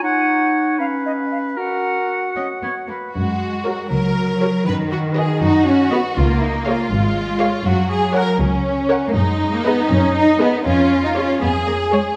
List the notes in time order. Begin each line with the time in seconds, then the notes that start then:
0.03 D#4 C#5 F#5
0.79 C#4 B4 F5
1.05 D#5
1.31 F5
1.57 F#4 A#4 F#5
2.36 C#4 D#5
2.62 B3 C#5
2.88 A#3 B4
3.14 F#2 G#3 F#4
3.65 F#4 A#4 C#5
3.90 C#2 F#3 A#4
4.41 F#4 A#4 C#5
4.66 F#2 D#3 B4
4.91 F#4
5.17 F#4 G#4 B4 D#5
5.41 F#2 D#4 F#4
5.66 C#4
5.91 B3 F#4 B4 D#5
6.16 C#2 A#3 F4
6.41 D#4
6.66 F4 G#4 C#5 F5
6.91 G#1 G#3
7.41 G#4 C#5 F5
7.65 F#2 F#3 F#4
7.91 G#4
8.15 A#4 C#5 F#5
8.40 C#2 C#4
8.90 A#4 C#5 F#5
9.08 A#3
9.14 F#2 G#3 D#4
9.53 A#3
9.65 B3 G#4 B4 D#5
9.90 F#2 C#4
10.16 D#4
10.40 B3 G#4 B4 D#5
10.65 F2 C#4 F4
11.04 D#4
11.16 C#4 G#4 C#5
11.40 F2 B3 G#4
11.66 A#3
11.91 G#3 G#4 C#5